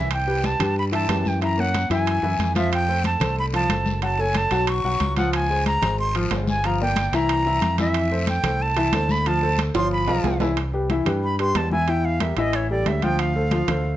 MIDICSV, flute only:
0, 0, Header, 1, 2, 480
1, 0, Start_track
1, 0, Key_signature, 0, "major"
1, 0, Tempo, 327154
1, 158, Time_signature, 4, 2, 24, 8
1, 20491, End_track
2, 0, Start_track
2, 0, Title_t, "Flute"
2, 0, Program_c, 0, 73
2, 0, Note_on_c, 0, 76, 83
2, 167, Note_off_c, 0, 76, 0
2, 196, Note_on_c, 0, 79, 89
2, 670, Note_on_c, 0, 81, 95
2, 692, Note_off_c, 0, 79, 0
2, 1133, Note_off_c, 0, 81, 0
2, 1152, Note_on_c, 0, 83, 91
2, 1240, Note_off_c, 0, 83, 0
2, 1388, Note_on_c, 0, 81, 92
2, 1875, Note_on_c, 0, 79, 83
2, 1897, Note_off_c, 0, 81, 0
2, 2087, Note_off_c, 0, 79, 0
2, 2096, Note_on_c, 0, 82, 88
2, 2345, Note_on_c, 0, 78, 94
2, 2367, Note_off_c, 0, 82, 0
2, 2809, Note_off_c, 0, 78, 0
2, 2825, Note_on_c, 0, 80, 93
2, 3709, Note_off_c, 0, 80, 0
2, 3779, Note_on_c, 0, 76, 91
2, 3989, Note_off_c, 0, 76, 0
2, 4017, Note_on_c, 0, 79, 107
2, 4451, Note_off_c, 0, 79, 0
2, 4489, Note_on_c, 0, 81, 92
2, 4926, Note_off_c, 0, 81, 0
2, 4971, Note_on_c, 0, 83, 97
2, 5059, Note_off_c, 0, 83, 0
2, 5212, Note_on_c, 0, 81, 99
2, 5870, Note_off_c, 0, 81, 0
2, 5921, Note_on_c, 0, 81, 91
2, 6172, Note_on_c, 0, 80, 103
2, 6194, Note_off_c, 0, 81, 0
2, 6408, Note_on_c, 0, 81, 104
2, 6430, Note_off_c, 0, 80, 0
2, 6873, Note_on_c, 0, 85, 105
2, 6895, Note_off_c, 0, 81, 0
2, 7582, Note_off_c, 0, 85, 0
2, 7591, Note_on_c, 0, 78, 90
2, 7811, Note_off_c, 0, 78, 0
2, 7839, Note_on_c, 0, 80, 97
2, 8278, Note_off_c, 0, 80, 0
2, 8311, Note_on_c, 0, 82, 104
2, 8754, Note_off_c, 0, 82, 0
2, 8795, Note_on_c, 0, 84, 91
2, 9013, Note_off_c, 0, 84, 0
2, 9522, Note_on_c, 0, 80, 82
2, 9766, Note_on_c, 0, 82, 89
2, 9788, Note_off_c, 0, 80, 0
2, 9995, Note_off_c, 0, 82, 0
2, 10011, Note_on_c, 0, 79, 95
2, 10490, Note_on_c, 0, 82, 97
2, 10512, Note_off_c, 0, 79, 0
2, 11437, Note_off_c, 0, 82, 0
2, 11451, Note_on_c, 0, 76, 90
2, 12108, Note_off_c, 0, 76, 0
2, 12165, Note_on_c, 0, 79, 97
2, 12644, Note_on_c, 0, 81, 103
2, 12666, Note_off_c, 0, 79, 0
2, 13367, Note_on_c, 0, 83, 92
2, 13389, Note_off_c, 0, 81, 0
2, 13603, Note_on_c, 0, 81, 100
2, 13625, Note_off_c, 0, 83, 0
2, 14075, Note_off_c, 0, 81, 0
2, 14320, Note_on_c, 0, 84, 102
2, 14537, Note_off_c, 0, 84, 0
2, 14563, Note_on_c, 0, 83, 95
2, 15226, Note_off_c, 0, 83, 0
2, 16487, Note_on_c, 0, 83, 81
2, 16703, Note_off_c, 0, 83, 0
2, 16722, Note_on_c, 0, 84, 110
2, 16968, Note_on_c, 0, 81, 90
2, 16990, Note_off_c, 0, 84, 0
2, 17190, Note_off_c, 0, 81, 0
2, 17199, Note_on_c, 0, 80, 95
2, 17452, Note_on_c, 0, 79, 87
2, 17474, Note_off_c, 0, 80, 0
2, 17679, Note_on_c, 0, 77, 97
2, 17701, Note_off_c, 0, 79, 0
2, 17930, Note_on_c, 0, 76, 81
2, 17952, Note_off_c, 0, 77, 0
2, 18162, Note_off_c, 0, 76, 0
2, 18169, Note_on_c, 0, 75, 94
2, 18417, Note_on_c, 0, 73, 79
2, 18439, Note_off_c, 0, 75, 0
2, 18634, Note_off_c, 0, 73, 0
2, 18643, Note_on_c, 0, 74, 85
2, 18892, Note_on_c, 0, 76, 85
2, 18914, Note_off_c, 0, 74, 0
2, 19121, Note_on_c, 0, 79, 109
2, 19143, Note_off_c, 0, 76, 0
2, 19364, Note_on_c, 0, 77, 93
2, 19386, Note_off_c, 0, 79, 0
2, 20491, Note_off_c, 0, 77, 0
2, 20491, End_track
0, 0, End_of_file